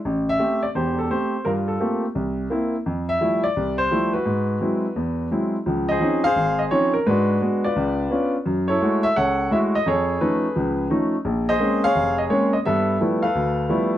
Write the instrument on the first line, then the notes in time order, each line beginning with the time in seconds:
grand piano
0.05 A1
0.29 E5
0.39 A3 C4 G4
0.63 D5
0.75 E1 E2 G4 C5
0.99 A4
1.10 A3 C4 G4 C5
1.45 G2 F4 A#4
1.68 A4
1.80 A3 A#3 C4 F4 G4
2.15 C2
2.50 A#3 C4 E4
2.86 F2
3.09 E5
3.21 F3 G3 A3 E4
3.44 D5
3.56 C2
3.78 C5
3.91 F3 G3 A3 E4
4.13 F#4 B4
4.26 G#2
4.60 F#3 G#3 C4 E4
4.96 E2
5.31 F#3 G#3 C4 E4
5.66 C#2 F3
5.89 G#4 C5 D#5
6.00 F3 C4 C#4 D#4
6.24 G#4 C5 F5
6.36 G#1
6.59 D#5
6.71 F3 C4 C#4 D#4 C#5
6.94 A#4
7.06 G#2 G#3 D4 F#4 B4
7.41 G#3 B3 F#4
7.64 F4 B4 D5
7.76 C#2
8.11 B3 C#4 D4 F4
8.46 F#2
8.68 E4 A4 C#5
8.81 G#3 A3 E4 F#4
9.03 E5
9.16 C#2 A4 C#5 F#5
9.51 G#3 A3 E4 F#4 E5
9.75 D#5
9.86 F2 G#4 A4 C#5
10.21 F3 A3 C#4 D#4 G#4 B4
10.56 C#2 F3
10.90 F3 A3 C#4 D#4
11.25 A#1
11.49 G#4 C5 D#5
11.60 G#3 A#3 C4 C#4
11.84 G#4 C#5 F5
11.95 F1
12.18 D#5
12.30 G#3 A#3 C4 C#4 C#5
12.53 D#5
12.65 G2 B3 A4 B4 E5
13.01 F3 G3 A3 B3 E4
13.23 A4 B4 F5
13.35 D2
13.69 F3 G3 A3 B3 E4